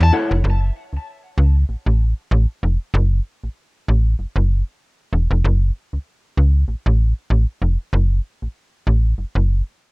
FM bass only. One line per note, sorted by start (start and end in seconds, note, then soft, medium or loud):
0.00 0.12 E2 medium
0.31 0.42 F1 loud
0.44 0.71 F#1 loud
0.93 0.98 C#2 soft
1.38 1.65 C#2 medium
1.69 1.76 A1 soft
1.86 2.13 A1 medium
2.31 2.46 A1 loud
2.63 2.78 F1 medium
2.94 3.21 F#1 loud
3.44 3.49 A1 soft
3.88 4.15 A1 medium
4.19 4.26 F#1 soft
4.36 4.63 F#1 medium
5.13 5.28 E1 medium
5.31 5.42 F1 medium
5.44 5.71 F#1 loud
5.93 5.98 C#2 soft
6.37 6.64 C#2 medium
6.68 6.75 A1 soft
6.86 7.13 A1 medium
7.30 7.46 A1 medium
7.62 7.77 F1 medium
7.93 8.20 F#1 loud
8.42 8.48 A1 soft
8.87 9.14 A1 medium
9.18 9.25 F#1 soft
9.35 9.62 F#1 medium